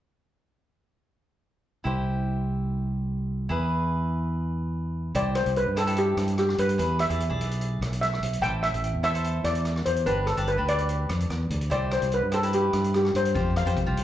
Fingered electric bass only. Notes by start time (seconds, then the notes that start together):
1.85 C2
3.50 E2
5.15 C2
5.46 C2
5.67 G2
6.17 G2
6.58 G2
6.79 E2
7.10 E2
7.30 B1
7.81 B1
8.22 B1
8.42 A1
8.73 A1
8.94 E2
9.44 E2
9.86 E2
10.06 G1
10.37 G1
10.58 D2
11.10 F2
11.30 E2
11.50 D2
11.71 C2
12.02 C2
12.23 G2
12.73 G2
13.14 G2
13.35 F2
13.66 F2
13.87 C2